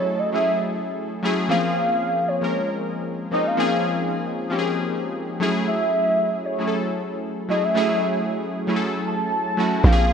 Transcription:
Already playing: synth keys F#3 A3 C#4 E4 G#4 A4, soft synth lead C#5
0.19 soft synth lead D#5
0.33 synth keys F#3 A3 C#4 E4 G#4, soft synth lead E5
1.23 synth keys F#3 A3 C#4 E4 G#4
1.49 synth keys F3 A#3 C4 C#4 G#4, soft synth lead F5
2.28 soft synth lead C#5
2.41 synth keys F3 G#3 A#3 C#4 A#4
3.31 synth keys F3 A#3 C4 C#4 D#4, soft synth lead D#5
3.47 soft synth lead F5
3.57 synth keys F3 A#3 C4 C#4 G#4
4.50 synth keys F3 A#3 C4 C#4 G4
4.59 synth keys G#4
5.40 synth keys F#3 A3 C#4 E4 G#4
5.67 soft synth lead E5
6.46 soft synth lead C#5
6.58 synth keys F#3 A3 C#4 E4 G#4
6.67 synth keys A4
7.48 synth keys F#3 A3 C#4 E4 G#4, soft synth lead D#5
7.64 soft synth lead E5
7.75 synth keys F#3 A3 C#4 E4 G#4
8.67 synth keys F#3 A3 C#4 E4 G#4
8.76 synth keys A4
9.06 soft synth lead A5
9.57 synth keys F#3 A3 C#4 E4 F#4
9.83 log drum bass A#1, synth keys F3 A#3 C4 C#4 G4, soft synth lead F5
9.92 synth keys G#4

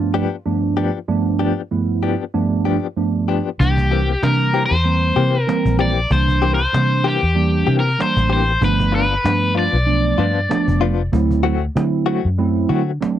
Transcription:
Already playing: tine electric piano G2 F3 A3 B3 D4, overdriven electric guitar F4
0.14 clean electric guitar F3 B3 D4 G4
0.45 tine electric piano G2 F3 A3 B3 D4
0.77 clean electric guitar F3 B3 D4 G4
1.08 tine electric piano G2 F3 A3 B3 D4
1.39 clean electric guitar F3 B3 D4 G4
1.71 tine electric piano G2 F3 A3 B3 E4
2.03 clean electric guitar F3 B3 D4 G4
2.33 tine electric piano G2 F3 A3 B3 D4
2.65 clean electric guitar F3 B3 D4 G4
2.97 tine electric piano G2 F3 A3 B3 D4
3.28 clean electric guitar F3 B3 D4 G4
3.59 fingered electric bass C2, tine electric piano E3 G3 A#3 D4, overdriven electric guitar G4, cajon bass
3.77 cajon bass, cajon slap
3.91 clean electric guitar E3 A#3 C4 G4
4.22 fingered electric bass C3, tine electric piano E3 G3 A#3 D4, overdriven electric guitar A#4, cajon slap
4.54 clean electric guitar E3 A#3 C4 G4
4.66 overdriven electric guitar C5
4.71 fingered electric bass E2
4.84 tine electric piano E3 G3 A#3 C4, cajon slap
5.16 fingered electric bass C3, clean electric guitar E3 A#3 C4 G4, cajon slap
5.42 overdriven electric guitar A#4
5.47 tine electric piano E3 G3 A#3 C4, cajon slap
5.65 fingered electric bass A#1, cajon bass
5.79 clean electric guitar E3 A#3 C4 G4, overdriven electric guitar D5
6.10 fingered electric bass C2, tine electric piano E3 G3 A#3 D4, overdriven electric guitar C5, cajon bass
6.28 cajon bass
6.42 clean electric guitar E3 A#3 C4 G4
6.55 overdriven electric guitar C5
6.73 fingered electric bass C3, tine electric piano E3 G3 A#3 D4, cajon slap
7.04 clean electric guitar E3 A#3 C4 G4, overdriven electric guitar G4
7.23 fingered electric bass E2
7.35 tine electric piano E3 G3 A#3 D4, cajon slap
7.67 fingered electric bass C3, clean electric guitar E3 A#3 C4 G4
7.80 overdriven electric guitar A#4
7.99 tine electric piano E3 G3 A#3 D4, overdriven electric guitar C5, cajon slap
8.17 fingered electric bass A1, cajon bass
8.30 clean electric guitar E3 A#3 C4 G4, overdriven electric guitar C5
8.61 fingered electric bass G1, tine electric piano F3 A3 B3 D4, overdriven electric guitar B4, cajon bass
8.79 cajon bass
8.92 clean electric guitar F3 B3 D4 F4, overdriven electric guitar B4, cajon slap
9.24 fingered electric bass G2, tine electric piano F3 A3 B3 D4, cajon slap
9.55 clean electric guitar F3 B3 D4 F4, overdriven electric guitar D5
9.73 fingered electric bass B1
9.86 tine electric piano F3 A3 B3 D4, cajon slap
10.18 fingered electric bass G2, clean electric guitar F3 B3 D4 F4, cajon slap
10.49 tine electric piano F3 A3 B3 D4, cajon slap
10.68 fingered electric bass F1, cajon bass
10.81 clean electric guitar F3 B3 D4 F4
11.12 fingered electric bass D2, tine electric piano F#3 A3 C4 E4, cajon bass
11.31 cajon bass
11.43 clean electric guitar F#3 A3 C4 F#4
11.76 fingered electric bass D3, tine electric piano F#3 A3 C4 E4, cajon slap
12.06 clean electric guitar F#3 A3 C4 F#4, cajon slap
12.25 fingered electric bass F#2
12.38 tine electric piano F#3 A3 C4 E4, cajon slap
12.69 fingered electric bass D3, clean electric guitar F#3 A3 C4 F#4, cajon slap
13.01 tine electric piano F#3 A3 C4 D4, cajon slap

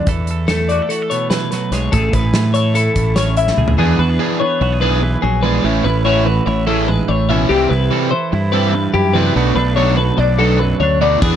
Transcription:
0.07 fingered electric bass E2, clean electric guitar E3 A4, kick, closed hi-hat
0.27 clean electric guitar A4, closed hi-hat
0.48 clean electric guitar A3 A4, snare, closed hi-hat
0.69 clean electric guitar F#4 D5, closed hi-hat
0.82 clean electric guitar A4
0.89 clean electric guitar F#4 A4, closed hi-hat
1.02 clean electric guitar A4
1.10 clean electric guitar B2 C#5, closed hi-hat
1.30 clean electric guitar E3 B4, snare, closed hi-hat
1.51 clean electric guitar F#3 B4, snare, closed hi-hat
1.71 fingered electric bass B1, clean electric guitar G#3 C#5, snare, closed hi-hat
1.92 fingered electric bass A1, clean electric guitar A2 G#4 A4, kick, closed hi-hat
2.13 fingered electric bass A1, clean electric guitar E4 B4, kick, closed hi-hat
2.33 fingered electric bass A2, clean electric guitar E3, snare, closed hi-hat
2.54 clean electric guitar A4 C#5, closed hi-hat
2.75 clean electric guitar E4 A4, closed hi-hat
2.96 fingered electric bass A1, clean electric guitar A2, kick, closed hi-hat
3.16 clean electric guitar C#4 C#5, snare, closed hi-hat
3.37 clean electric guitar E4 E5, closed hi-hat
3.47 snare
3.57 fingered electric bass C#2, clean electric guitar A2 G#4, mid tom
3.68 floor tom
3.78 fingered electric bass E2, overdriven electric guitar E3 B3 D4 G#4, clean electric guitar E3 B3 D4 G#4
3.99 fingered electric bass E2, clean electric guitar F#4 B4, muted overdriven electric guitar stroke
4.10 clean electric guitar G#4
4.19 overdriven electric guitar E3 B3 D4 G#4, clean electric guitar G#4
4.40 clean electric guitar B3 C#5, muted overdriven electric guitar stroke
4.61 fingered electric bass B1, clean electric guitar F#4, muted overdriven electric guitar stroke
4.73 clean electric guitar G#4
4.81 overdriven electric guitar E3 B3 D4 G#4, clean electric guitar G#4 B4
5.03 clean electric guitar E3, muted overdriven electric guitar stroke
5.22 fingered electric bass A#1, clean electric guitar F#3 G#4, muted overdriven electric guitar stroke
5.43 overdriven electric guitar E3 B3 D4 G#4, clean electric guitar G#3 B4
5.64 fingered electric bass A1, clean electric guitar A2 C#4, overdriven electric guitar E3 A3 C#4 E4
5.84 fingered electric bass A1, clean electric guitar E4 B4, muted overdriven electric guitar stroke
6.05 overdriven electric guitar E3 A3 C#4 E4, clean electric guitar F#4 C#5
6.26 clean electric guitar E3 B4, muted overdriven electric guitar stroke
6.46 fingered electric bass A1, clean electric guitar E4 C#5, muted overdriven electric guitar stroke
6.67 overdriven electric guitar E3 A3 C#4 E4, clean electric guitar G#4 A4
6.88 clean electric guitar G#2 B4, muted overdriven electric guitar stroke
7.08 fingered electric bass A1, clean electric guitar A2 C#5, muted overdriven electric guitar stroke
7.29 clean electric guitar B2 E5, overdriven electric guitar E3 A3 C#4 E4
7.49 fingered electric bass C2, clean electric guitar C3 A3 G4, overdriven electric guitar E3 G3 C4 E4
7.69 fingered electric bass C2, clean electric guitar E4 B4, muted overdriven electric guitar stroke
7.91 overdriven electric guitar E3 G3 C4 E4, clean electric guitar A4
8.11 clean electric guitar E3 C5, muted overdriven electric guitar stroke
8.32 fingered electric bass G2, clean electric guitar E4, muted overdriven electric guitar stroke
8.52 overdriven electric guitar E3 G3 C4 E4, clean electric guitar A4 B4
8.74 clean electric guitar G2, muted overdriven electric guitar stroke
8.94 fingered electric bass F#2, clean electric guitar E4 G4, muted overdriven electric guitar stroke
9.14 clean electric guitar C3 A3 B4, overdriven electric guitar E3 G3 C4 E4
9.26 clean electric guitar B3
9.35 fingered electric bass B1, clean electric guitar B2 A3, overdriven electric guitar F#3 B3 D4 F#4
9.56 fingered electric bass B1, clean electric guitar D4 B4, muted overdriven electric guitar stroke
9.76 overdriven electric guitar F#3 B3 D4 F#4, clean electric guitar A4 C#5
9.97 clean electric guitar F#3 B4, muted overdriven electric guitar stroke
10.17 fingered electric bass B1, clean electric guitar D4 D5, muted overdriven electric guitar stroke
10.39 overdriven electric guitar F#3 B3 D4 F#4, clean electric guitar A4
10.59 clean electric guitar F#2 B4, muted overdriven electric guitar stroke
10.80 fingered electric bass D2, clean electric guitar D4 C#5, muted overdriven electric guitar stroke
11.01 clean electric guitar B2 A3 D5, overdriven electric guitar F#3 B3 D4 F#4
11.21 fingered electric bass E2, overdriven electric guitar E3 B3 D4 G#4, clean electric guitar E3 B3 D4 G#4, kick, crash

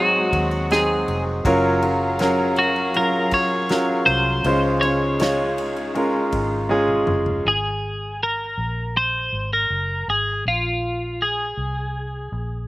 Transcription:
Already playing: fingered electric bass G#1, grand piano G#2 F#3 C4 D#4 F#4 G#4, string section G#3 C4 F#4, clean electric guitar F#4
0.33 fingered electric bass D#2, kick, ride
0.51 ride
0.70 grand piano F#3 C4 D#4 G#4, clean electric guitar G#4, snare, ride
1.08 fingered electric bass F1, ride
1.45 fingered electric bass F#1, string section F#3 C#4 G#4 A#4 F5, grand piano F#3 C#4 F4 A#4, kick, ride
1.82 grand piano F#3 C#4 F4 A#4, ride
2.19 grand piano F#3 C#4 A#4 F5, snare, ride
2.56 clean electric guitar F#4, ride
2.76 ride
2.94 grand piano F#3 C#4 F4 A#4, clean electric guitar A#4, ride
3.31 fingered electric bass C#2, clean electric guitar C#5, kick, ride
3.69 grand piano F#3 C#4 F4 A#4, snare, ride
4.06 fingered electric bass C2, clean electric guitar C5, ride
4.44 fingered electric bass C#2, string section C#3 G#3 C#4 D#4, grand piano C#3 G#3 C#4 F4 C5, ride
4.81 grand piano G#3 C#4 F4 C#5, clean electric guitar C#5, ride
5.20 grand piano G#3 C#4 F4 C#5, snare, ride
5.58 ride
5.76 ride
5.95 grand piano G#3 C#4 F4 A#4, ride
6.32 fingered electric bass G#1, kick, ride
6.69 grand piano G#3 C#4 F4 G#4, high tom
6.88 mid tom
7.07 fingered electric bass F#1, mid tom
7.26 floor tom
7.45 fingered electric bass G#1, clean electric guitar G#4
8.23 clean electric guitar A#4
8.58 fingered electric bass A#1
8.97 clean electric guitar C5
9.32 fingered electric bass G#1
9.53 clean electric guitar A#4
9.70 fingered electric bass F#1
10.08 fingered electric bass G#1, clean electric guitar G#4
10.46 fingered electric bass A#1, clean electric guitar F4
11.22 clean electric guitar G#4
11.57 fingered electric bass C2
12.32 fingered electric bass A#1

